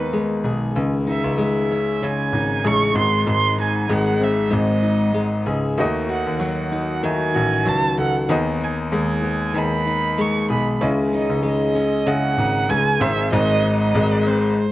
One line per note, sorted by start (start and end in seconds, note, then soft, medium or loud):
0.00 0.40 D#2 medium
0.00 1.74 D#3 medium
0.00 0.12 G#3 medium
0.00 0.83 B3 medium
0.00 1.06 D#4 medium
0.00 0.41 B4 medium
0.13 1.37 G#3 medium
0.44 0.73 B1 medium
0.44 3.95 G#4 medium
0.76 1.21 C#2 medium
0.76 2.01 C#3 medium
1.07 2.33 D#4 soft
1.07 1.38 E5 medium
1.24 2.29 C#2 medium
1.38 2.64 G#3 medium
1.38 2.05 E5 medium
1.71 3.03 C#4 medium
2.03 2.94 C#3 medium
2.03 2.69 G#5 medium
2.32 2.62 G#1 medium
2.32 3.58 D#4 soft
2.64 2.93 A1 medium
2.64 3.89 G#3 medium
2.64 2.97 C#6 loud
2.95 3.24 G#1 medium
2.95 3.26 G#2 medium
2.95 3.26 C6 loud
3.27 3.86 G#1 medium
3.27 4.49 G#2 medium
3.27 3.58 C6 loud
3.58 4.82 D#4 medium
3.58 3.95 G#5 medium
3.89 4.49 G#1 loud
3.89 5.13 G#3 medium
3.93 4.25 F#5 medium
4.20 5.85 C4 soft
4.20 4.56 E5 medium
4.51 5.43 G#1 medium
4.51 5.84 G#2 medium
4.55 5.48 D#5 medium
4.83 6.08 D#4 soft
5.14 5.85 G#3 medium
5.46 5.76 C#2 medium
5.46 5.85 G#4 medium
5.78 6.23 D#2 medium
5.78 7.03 D#3 medium
5.78 6.80 A3 medium
5.78 6.80 F#4 medium
5.78 6.81 D#5 loud
6.09 7.33 F#4 medium
6.09 6.39 F#5 medium
6.27 7.31 D#2 medium
6.39 7.64 F#3 medium
6.39 7.06 F#5 medium
6.72 8.60 D#4 soft
7.03 8.28 D#3 medium
7.03 8.05 A3 soft
7.03 7.11 E4 soft
7.03 8.06 D#5 medium
7.03 7.70 G#5 loud
7.11 8.09 F#4 soft
7.34 7.64 A1 medium
7.34 8.36 F#4 medium
7.65 7.96 C#2 medium
7.65 8.36 F#3 medium
7.65 7.99 A5 loud
7.97 8.27 C#2 medium
7.97 8.36 A4 medium
7.97 8.29 F#5 medium
8.29 8.89 D#2 medium
8.29 9.54 D#3 medium
8.29 9.31 B3 medium
8.29 9.32 G#4 medium
8.29 9.32 D#5 medium
8.60 9.86 D#4 medium
8.60 8.77 G#5 medium
8.92 9.51 D#2 loud
8.92 10.17 G#3 medium
8.92 9.60 G#5 medium
9.24 10.88 B3 soft
9.54 10.46 D#2 medium
9.54 11.78 D#3 medium
9.54 10.57 B3 medium
9.54 10.57 G#4 medium
9.54 10.58 D#5 medium
9.58 10.23 B5 medium
9.87 11.12 D#4 medium
10.18 11.42 G#3 medium
10.18 10.51 C#6 medium
10.50 10.79 B1 medium
10.50 14.00 G#4 medium
10.50 10.80 B5 medium
10.81 11.26 C#2 medium
10.81 12.05 C#3 medium
10.81 11.82 C#4 medium
10.81 11.83 E4 medium
10.81 11.83 D#5 medium
11.13 12.37 D#4 medium
11.13 11.43 D#5 medium
11.29 12.34 C#2 medium
11.43 12.69 G#3 medium
11.43 12.09 D#5 medium
11.75 13.08 C#4 medium
12.06 13.01 C#3 medium
12.06 13.01 C#4 medium
12.06 13.01 E4 medium
12.06 13.02 D#5 medium
12.06 12.71 F#5 loud
12.38 12.67 G#1 medium
12.38 13.63 D#4 medium
12.69 12.98 C#2 medium
12.69 13.95 G#3 medium
12.69 13.03 G#5 loud
13.00 13.30 G#1 medium
13.00 13.32 G#2 medium
13.00 14.02 C4 medium
13.00 14.02 G#4 medium
13.00 14.03 C5 medium
13.00 13.33 E5 medium
13.32 13.91 G#1 loud
13.32 14.65 G#2 medium
13.32 13.78 D#5 loud
13.63 14.65 D#4 medium
13.81 14.28 D#5 medium
13.95 14.54 G#1 loud
13.95 14.72 G#3 medium
14.27 14.65 C4 medium
14.27 14.58 C5 medium
14.59 14.72 C5 medium